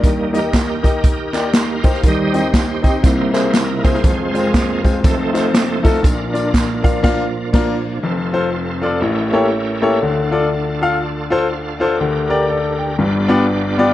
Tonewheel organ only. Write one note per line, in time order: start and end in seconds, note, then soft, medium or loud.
0.00 0.39 D#3 medium
0.00 0.40 G3 medium
0.00 0.31 D#4 medium
0.05 0.40 A#3 medium
0.36 1.05 D#4 medium
0.36 1.05 G4 medium
0.36 1.05 A#4 loud
1.06 2.01 D#4 medium
1.06 2.01 G4 medium
1.06 1.56 A#4 loud
1.57 2.02 A#4 medium
1.57 2.07 F5 medium
2.07 2.42 D#3 medium
2.07 2.42 G3 soft
2.07 2.42 D#4 medium
2.07 2.56 G4 medium
2.07 2.56 C5 medium
2.07 2.57 D#5 loud
2.57 3.02 D#4 medium
2.57 3.02 G4 medium
2.57 3.05 C5 loud
3.05 4.01 C3 medium
3.05 4.01 A#3 soft
3.05 4.01 D#4 medium
3.05 4.02 E4 medium
3.05 3.57 C5 loud
3.56 3.86 A#4 medium
3.84 4.32 F4 medium
3.84 4.80 G#4 medium
3.84 4.36 C5 medium
4.06 4.81 F3 medium
4.06 4.81 G#3 medium
4.06 4.81 C4 medium
4.33 5.00 F4 medium
4.33 4.85 A#4 loud
4.86 4.95 G#4 medium
5.03 5.79 F3 medium
5.03 5.80 A3 medium
5.03 6.00 C4 medium
5.03 6.00 D#4 medium
5.03 6.07 A4 medium
6.04 6.84 D4 medium
6.04 7.50 F4 medium
6.04 7.50 A#4 medium
6.84 7.99 A#2 medium
6.84 8.00 F3 soft
6.84 8.00 D4 medium
8.03 9.01 C4 medium
8.03 9.00 F4 medium
8.03 9.01 A4 medium
9.01 9.99 A3 medium
9.01 9.99 C#4 medium
9.01 9.99 E4 medium
9.01 9.99 G4 medium
9.01 9.99 A#4 medium
10.00 11.96 D4 medium
10.00 11.96 F4 medium
10.00 11.96 A4 medium
11.31 11.49 G5 medium
11.49 11.78 F5 medium
11.78 11.98 D5 medium
11.97 12.96 D4 medium
11.97 12.97 G4 medium
11.97 12.97 A#4 medium
13.00 13.94 B3 medium
13.00 13.94 D4 medium
13.00 13.94 F4 medium
13.00 13.94 G4 medium
13.00 13.94 D5 loud